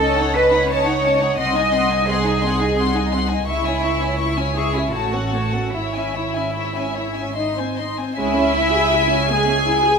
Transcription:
Already playing: C#2 A4
0.00 C#4 D#5 A5
0.16 D#4 C#5 F#5
0.34 C#4 B4 D#5 A5
0.50 D#4 C#5 F#5
0.67 C#4 C#5 D#5 A5
0.85 D#4 C#5 F#5
1.03 C#4 D#5 A5
1.20 D#4 C#5 F#5
1.37 C2 C4 D#5 F#5 C6
1.54 D#4 D#5 G#5
1.72 C4 F#5 C6
1.88 D#4 D#5 G#5
2.05 C4 G#4 F#5 C6
2.23 D#4 D#5 G#5
2.41 C4 F#5 C6
2.59 D#4 D#5 G#5
2.76 C4 F#5 C6
2.94 D#4 D#5 G#5
3.11 C4 F#5 C6
3.29 D#4 D#5 G#5
3.47 C#2 E4 E5 C#6
3.64 C#4 C#5 G#5
3.82 E4 E5 C#6
4.00 C#4 C#5 G#5
4.18 E4 E5 C#6
4.37 C#4 C#5 G#5
4.55 E4 G#4 E5 C#6
4.73 C#4 E4 C#5 G#5
4.91 A1 A3 F#4 C#5 A5
5.13 C#4 A4 F#5
5.32 A3 C#5 A5
5.51 C#4 A4 F#5
5.71 G#1 E4 C#5 E5
5.92 C#4 E5 G#5
6.15 E4 C#5 E5
6.33 C#4 E5 G#5
6.54 E4 C#5 E5
6.75 C#4 E5 G#5
6.95 E4 C#5 E5
7.14 C#4 E5 G#5
7.36 D#4 D#5 C6
7.57 C4 C5 G#5
7.77 D#4 D#5 C6
7.97 C4 C5 G#5
8.16 C#2 G#3 C#4 E4 E5 G#5
8.36 C#4
8.55 E4
8.74 G#4
8.93 E4
9.10 C#4
9.28 G#3 G#4 G#5
9.47 C#4
9.66 E4
9.84 G#4

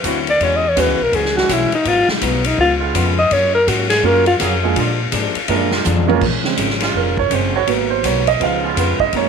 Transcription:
0.04 D2 D3 E3 F#3 C4 D4 E4 F#4, kick, hi-hat pedal, ride
0.27 D5, ride
0.40 E2 E3 G#3 C#4 F#4 C#5, kick, ride
0.56 D#5
0.69 C#5
0.76 D#2 E3 G#3 B3 C#4 F#4, kick, hi-hat pedal, ride
0.80 B4
0.88 C#2
1.00 B1 A#4
1.12 C#2 E3 G#3 C#4 F#4 G#4, kick, ride
1.25 snare
1.36 E3 G#3 C#4 F#4, snare
1.49 B1 E3 G#3 C#4 E4 F#4, kick, hi-hat pedal, ride
1.72 D#4, ride
1.85 G#1 G#2 F#3 B3 D#4 F4, kick, ride
2.08 G#3, muted upright bass stroke, snare
2.21 B1 G#2 F#3 B3 D#4, kick, hi-hat pedal, ride
2.44 D#4, ride
2.58 C#2 C#3 G#3 B3 F4, kick
2.80 C#3 G#3 B3 F4
2.95 F2 C#3 G#3 B3 F4, kick, hi-hat pedal, ride
3.19 D#5
3.31 F#2 F#3 A#3 C#4 F4 C#5, kick, ride
3.55 A#4
3.67 G#2 F#3 A#3 C#4 F4 F#4, kick, hi-hat pedal, ride
3.90 G#4, snare, ride
4.03 F#2 C#3 F#3 A#3 C#4 F4 A#4, kick
4.26 F4, ride
4.39 F2 C#3 F#3 A#3 C#4 F4 G#4, kick, hi-hat pedal, ride
4.63 G#3 A#3 D4 F4 G#4
4.75 A#2 D3 F3 G#3 A#3 D4 F4, kick, ride
5.12 G#2 A#2 F3 G#3 D4, kick, hi-hat pedal, ride
5.35 muted upright bass stroke, ride
5.48 F#2 A#2 F3 G#3 A#3 D4 F4 A#4, kick, ride
5.71 D3 G#3 A#3 F4, snare
5.85 F2 A#2 F3 G#3 D4, hi-hat pedal, mid tom
5.97 mid tom
6.07 G#3 A#3 C#4 F4 A#4, mid tom
6.21 A#1 A#2 F3 G#3 C#4, kick, crash
6.44 C#3 G#3 C4, snare
6.57 G#1 A#2 F3 G#3 C#4, kick, hi-hat pedal, ride
6.70 snare
6.80 C#3 G#3 A#3 F4, snare, ride
6.94 F1 A#2 F3 G#3 C#4 A#4, kick
7.17 C#5, kick
7.30 F#1 A#2 C#3 F3 G#3 C4 C#4 C5, kick, hi-hat pedal, ride
7.53 D#3 G#3 B3 F#4 C#5
7.67 G#1 G#2 F#3 A#3 B3 D#4 B4, kick, ride
7.90 C5
8.03 B1 G#2 F#3 B3 D#4 C#5, kick, hi-hat pedal, ride
8.27 D#5, ride
8.40 C#2 C#3 F3 G#3 B3 D#4 F4 F5, kick, ride
8.63 C#3 G#3 B3 F4 G#4
8.77 F2 C#3 G#3 B3 F4 B4, kick, hi-hat pedal, ride
9.00 D#5, kick
9.13 F#2 F#3 G#3 A#3 C#4 D#4 A#4, kick, ride
9.17 C#5

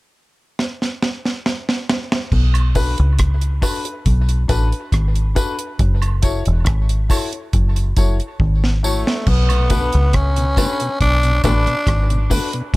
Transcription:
0.59 snare
0.82 snare
1.02 snare
1.25 snare
1.46 snare
1.69 snare
1.89 snare
2.12 snare
2.32 B1, kick, crash
2.54 closed hi-hat, high woodblock
2.75 D4 F#4 A4 B4, kick, open hi-hat, tambourine
2.98 C#2, closed hi-hat
3.19 kick, cross-stick, closed hi-hat
3.41 closed hi-hat
3.62 D4 F#4 A4 B4, kick, open hi-hat, tambourine, high woodblock
3.85 A4 B4, closed hi-hat
4.06 B1, kick, closed hi-hat
4.29 closed hi-hat
4.48 A1 D4 F#4 A4 B4, kick, closed hi-hat, tambourine
4.72 closed hi-hat
4.92 G#1, kick, cross-stick, closed hi-hat
5.16 closed hi-hat
5.35 D4 F#4 A4 B4, kick, closed hi-hat, tambourine
5.59 closed hi-hat
5.79 F#1, kick, closed hi-hat
6.02 closed hi-hat, high woodblock
6.22 E4 F#4 A4 C#5, kick, closed hi-hat, tambourine
6.45 E1, closed hi-hat
6.66 G#1, kick, cross-stick, closed hi-hat
6.89 closed hi-hat
7.09 E4 F#4 A4 C#5, kick, open hi-hat, tambourine, high woodblock
7.33 A4 C#5, closed hi-hat
7.53 F#1, kick, closed hi-hat
7.76 closed hi-hat
7.97 F#1 E4 F#4 A4 C#5, kick, closed hi-hat, tambourine
8.20 closed hi-hat
8.40 G#1, kick
8.64 snare
8.83 A3 E4 F#4 A4 C#5, tambourine
9.07 snare
9.27 B1 B3, kick, crash
9.49 B2, closed hi-hat, high woodblock
9.70 D3 A3 B3 D4 F#4 A4 B4, kick, closed hi-hat, tambourine
9.92 C#2, closed hi-hat
10.13 C#4, kick, cross-stick, closed hi-hat
10.36 B2, closed hi-hat
10.57 D3 A3 B3 D4 F#4 A4 B4, kick, closed hi-hat, tambourine, high woodblock
10.80 B2 A4 B4, closed hi-hat
11.01 B1 D4, kick, closed hi-hat
11.23 B2, closed hi-hat
11.43 A1 D3 A3 B3 D4 F#4 A4 B4, kick, cross-stick, closed hi-hat, tambourine, high woodblock
11.67 B2, closed hi-hat
11.87 G#1, kick, cross-stick, closed hi-hat
12.10 B2, closed hi-hat
12.30 D3 A3 B3 D4 F#4 A4 B4, kick, open hi-hat, tambourine
12.53 B2, closed hi-hat

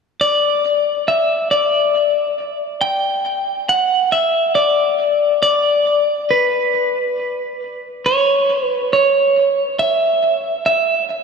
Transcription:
0.21 D5
1.08 E5
1.51 D5
2.81 G5
3.69 F#5
4.12 E5
4.55 D5
5.43 D5
6.31 B4
8.06 C#5
8.66 B4
8.93 C#5
9.79 E5
10.66 E5

